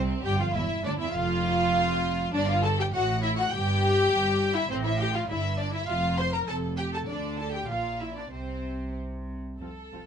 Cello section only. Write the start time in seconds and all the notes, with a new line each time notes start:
Already playing: C2
0.24 G2
0.38 F2
0.54 E2
0.84 D2
0.99 E2
1.14 F2
2.34 G2
2.93 A2
3.53 G2
4.11 G2
4.71 A2
5.31 G2
5.89 F2
6.48 F2
7.08 D3
7.69 A#2
8.33 C3
9.60 F2
9.92 F2